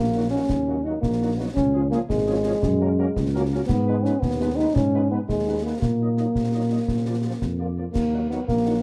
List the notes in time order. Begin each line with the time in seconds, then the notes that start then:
Already playing: A#1 A#3
0.14 F#3 A#3 D#4 F#4
0.31 F#3 A#3 C#4 D#4 F#4
0.49 D#2, concert bass drum, snare
0.67 F#3 A#3 D#4 F#4
0.84 F#3 A#3 D#4 F#4
1.01 A#1 A#3, concert bass drum, snare
1.21 F#3 A#3 D#4 F#4
1.37 F#3 A#3 B3 D#4 F#4
1.54 C#2 C#4, concert bass drum, snare
1.74 F3 C#4 F4 G#4
1.91 F3 A#3 C#4 F4 G#4, snare
2.09 G#1 G#3, concert bass drum, snare
2.26 F3 C#4 F4 G#4
2.45 F3 C#4 F4 G#4
2.63 F#2, concert bass drum, snare
2.80 A#3 C#4 F#4 A#4
2.98 A#3 C#4 F#4 A#4
3.16 C#2, concert bass drum, snare
3.33 A#3 C#4 F#4 A#4
3.52 A#3 C#4 F#4 A#4
3.67 G#2 B3, concert bass drum, snare, crash
3.87 G#3 B3 D#4 B4
4.03 G#3 B3 C#4 D#4 B4, snare
4.20 D#2 B3, concert bass drum, snare
4.40 G#3 B3 D#4 B4
4.56 G#3 B3 D#4 B4
4.75 G#2 C#4, concert bass drum, snare
4.93 G#3 B3 D#4 B4
5.10 G#3 B3 D#4 B4
5.28 D#2 G#3, concert bass drum, snare
5.47 G#3 B3 D#4 B4
5.64 G#3 A#3 B3 D#4 B4
5.81 A#2 A#3, concert bass drum, snare
6.00 F#3 A#3 D#4 D#5
6.17 F#3 A#3 D#4 D#5, snare
6.35 A#2, concert bass drum, snare
6.53 F#3 A#3 D#4 D#5
6.70 F#3 A#3 D#4 D#5
6.88 A#2, concert bass drum, snare
7.06 F3 A#3 F4 D5
7.23 F3 A#3 F4 D5
7.41 F2, concert bass drum, snare
7.58 F3 A#3 F4 D5
7.77 F3 A#3 F4 D5
7.93 D#2 A#3, concert bass drum, snare, crash
8.12 F#3 A#3 D#4 F#5
8.30 F#3 A#3 B3 D#4 F#5, snare
8.48 A#1 A#3, concert bass drum, snare
8.66 F#3 A#3 D#4 F#5